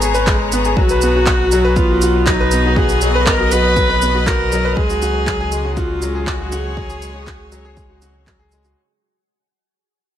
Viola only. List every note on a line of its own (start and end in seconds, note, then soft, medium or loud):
0.78 1.78 F#4 loud
1.76 2.28 F4 loud
2.26 2.77 D#4 loud
2.76 3.26 G#4 loud
3.27 3.53 A#4 loud
3.51 4.28 B4 loud
4.27 4.77 A#4 loud
4.76 5.76 G#4 loud
5.77 6.29 F4 loud
6.27 6.54 F#4 medium
6.53 8.27 G#4 loud